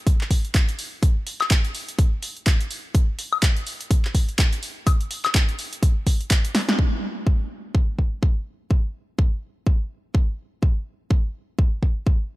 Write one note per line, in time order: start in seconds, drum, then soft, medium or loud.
0.07 kick loud
0.07 closed hi-hat medium
0.21 clap soft
0.31 kick medium
0.31 open hi-hat loud
0.45 closed hi-hat soft
0.55 kick loud
0.55 clap loud
0.55 closed hi-hat medium
0.69 closed hi-hat soft
0.79 open hi-hat medium
1.03 kick loud
1.03 closed hi-hat medium
1.27 open hi-hat loud
1.41 clap soft
1.41 high woodblock medium
1.51 kick loud
1.51 clap loud
1.51 closed hi-hat medium
1.65 closed hi-hat soft
1.75 open hi-hat medium
1.89 closed hi-hat medium
1.99 kick loud
1.99 closed hi-hat medium
2.23 open hi-hat medium
2.37 closed hi-hat soft
2.47 kick loud
2.47 clap loud
2.47 closed hi-hat medium
2.61 closed hi-hat medium
2.71 open hi-hat medium
2.95 kick loud
2.95 closed hi-hat medium
3.19 open hi-hat medium
3.33 high woodblock medium
3.43 kick loud
3.43 clap loud
3.43 closed hi-hat medium
3.57 closed hi-hat soft
3.67 open hi-hat medium
3.81 closed hi-hat medium
3.91 kick loud
3.91 closed hi-hat medium
4.05 clap soft
4.15 kick medium
4.15 open hi-hat loud
4.29 closed hi-hat soft
4.39 kick loud
4.39 clap loud
4.39 closed hi-hat medium
4.53 closed hi-hat medium
4.63 open hi-hat medium
4.87 kick loud
4.87 closed hi-hat medium
4.87 high woodblock medium
5.01 closed hi-hat soft
5.11 open hi-hat loud
5.25 clap soft
5.25 closed hi-hat soft
5.25 high woodblock medium
5.35 kick loud
5.35 clap loud
5.35 closed hi-hat medium
5.49 closed hi-hat soft
5.59 open hi-hat medium
5.73 closed hi-hat medium
5.83 kick loud
5.83 closed hi-hat medium
6.07 kick medium
6.07 open hi-hat loud
6.21 closed hi-hat soft
6.31 kick loud
6.31 clap loud
6.31 closed hi-hat medium
6.45 closed hi-hat medium
6.55 snare medium
6.55 open hi-hat medium
6.69 snare medium
6.79 kick loud
7.27 kick loud
7.75 kick loud
7.99 kick medium
8.23 kick loud
8.71 kick loud
9.19 kick loud
9.67 kick loud
10.15 kick loud
10.63 kick loud
11.11 kick loud
11.59 kick loud
11.83 kick medium
12.07 kick loud